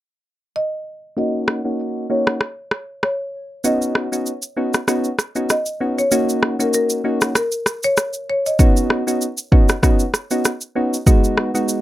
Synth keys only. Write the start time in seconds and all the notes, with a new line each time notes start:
1.17 A#3 C#4 D#4 F#4
1.64 A#3 C#4 D#4 F#4
2.10 A#3 C#4 D#4 F#4
3.64 B3 C#4 D#4 F#4
4.12 B3 C#4 D#4 F#4
4.57 B3 C#4 D#4 F#4
4.88 B3 C#4 D#4 F#4
5.35 B3 C#4 D#4 F#4
5.80 B3 C#4 D#4 F#4
6.11 A#3 C#4 D#4 F#4
6.59 A#3 C#4 D#4 F#4
7.04 A#3 C#4 D#4 F#4
8.59 B3 C#4 D#4 F#4
9.07 B3 C#4 D#4 F#4
9.52 B3 C#4 D#4 F#4
9.83 B3 C#4 D#4 F#4
10.31 B3 C#4 D#4 F#4
10.75 B3 C#4 D#4 F#4
11.06 G#3 B3 D#4 F#4
11.54 G#3 B3 D#4 F#4